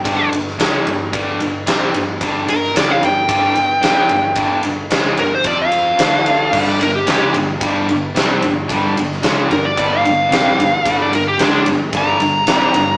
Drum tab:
CC |----------------|----------------|----------------|x---------------|
RD |x-x-x-x-x-x-x-x-|x-x-x-x-x-x-x-x-|x-x-x-x-x-x-x-x-|--x-x-x-x-x-x-x-|
SD |---oo-------o---|---oo-------o---|----o-------o---|----o-------o---|
BD |o-------o-------|o-------o-------|o-------o-------|o-------o-------|

CC |----------------|----------------|
RD |x-x-x-x-x-x-x-x-|x-x-x-x-x-x-x-x-|
SD |---oo-------o---|----o-------o---|
BD |o-------o-------|o-------o-------|